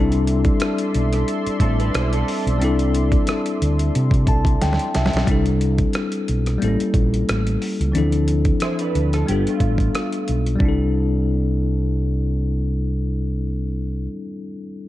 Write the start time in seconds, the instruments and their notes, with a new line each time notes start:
Already playing: fingered electric bass C2, tine electric piano G3 C4 D4 E4 A4, analog synth pad A4 D5 E5 C6
0.12 closed hi-hat
0.27 closed hi-hat
0.45 kick, closed hi-hat
0.60 cross-stick, closed hi-hat
0.78 closed hi-hat
0.94 fingered electric bass B1, closed hi-hat
1.13 cross-stick, closed hi-hat
1.28 closed hi-hat
1.47 muted fingered electric bass stroke, closed hi-hat
1.60 fingered electric bass A1, clean electric guitar C4 A4, kick, closed hi-hat
1.80 clean electric guitar D4 B4, closed hi-hat
1.94 fingered electric bass B1, clean electric guitar E4 C5, cross-stick, closed hi-hat
2.13 clean electric guitar C4 A4, closed hi-hat
2.28 open hi-hat
2.47 fingered electric bass B1, closed hi-hat
2.58 fingered electric bass C2, tine electric piano G3 C4 D4, closed hi-hat
2.63 tine electric piano E4 A4
2.79 closed hi-hat
2.95 closed hi-hat
3.12 kick, closed hi-hat
3.27 cross-stick, closed hi-hat
3.46 closed hi-hat
3.62 fingered electric bass D2, closed hi-hat
3.79 closed hi-hat
3.95 fingered electric bass C3, closed hi-hat
4.11 kick, closed hi-hat
4.27 fingered electric bass C2, tine electric piano A5, kick, closed hi-hat
4.45 kick, closed hi-hat
4.62 fingered electric bass D2, tine electric piano G5, snare, closed hi-hat
4.73 snare
4.79 closed hi-hat
4.95 fingered electric bass C2, tine electric piano E5, snare, closed hi-hat
5.06 snare
5.13 fingered electric bass B1, snare, closed hi-hat
5.25 fingered electric bass C2, tine electric piano G3 C4 D4, kick, closed hi-hat
5.30 tine electric piano E4 A4
5.46 closed hi-hat
5.61 closed hi-hat
5.78 kick, closed hi-hat
5.93 cross-stick, closed hi-hat
6.12 closed hi-hat
6.28 fingered electric bass B1, closed hi-hat
6.46 cross-stick, closed hi-hat
6.58 tine electric piano G3 A#3 C4, closed hi-hat
6.63 fingered electric bass A1, tine electric piano E4 A4
6.68 tine electric piano C#4
6.80 muted fingered electric bass stroke, closed hi-hat
6.94 fingered electric bass A#1, kick, closed hi-hat
7.14 closed hi-hat
7.29 fingered electric bass A1, cross-stick, closed hi-hat
7.47 closed hi-hat
7.62 open hi-hat
7.80 fingered electric bass C#2, closed hi-hat
7.92 fingered electric bass D2, tine electric piano E3 C4 D4, closed hi-hat
7.97 tine electric piano F3 E4 A4
8.12 closed hi-hat
8.28 closed hi-hat
8.45 kick, closed hi-hat
8.60 clean electric guitar E4 C5, cross-stick, closed hi-hat
8.79 clean electric guitar D4 B4, closed hi-hat
8.95 fingered electric bass D2, closed hi-hat
9.13 clean electric guitar C4 A4, cross-stick, closed hi-hat
9.26 fingered electric bass G1, tine electric piano G3 B3 D4, clean electric guitar B3 G4, closed hi-hat
9.31 tine electric piano F4 A4
9.47 clean electric guitar A3 F4, muted fingered electric bass stroke, closed hi-hat
9.60 fingered electric bass A1, kick, closed hi-hat
9.78 kick, closed hi-hat
9.95 cross-stick, closed hi-hat
10.13 closed hi-hat
10.28 fingered electric bass B1, closed hi-hat
10.46 closed hi-hat
10.55 tine electric piano G3 C4
10.60 fingered electric bass C2, tine electric piano D4, kick
10.65 tine electric piano E4 A4